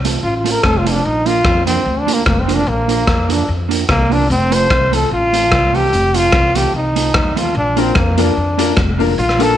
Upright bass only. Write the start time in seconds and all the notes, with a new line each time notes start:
Already playing: C2
0.23 A1
0.64 F1
1.05 A#1
1.45 F2
1.86 D2
2.27 F1
2.67 A#1
3.08 F2
3.49 F2
3.89 C2
4.30 F1
4.70 C2
5.11 A1
5.52 C2
5.93 F1
6.33 C2
6.74 C2
7.15 D#2
7.55 A#1
7.96 F2
8.37 F2
8.77 F1
9.18 A#1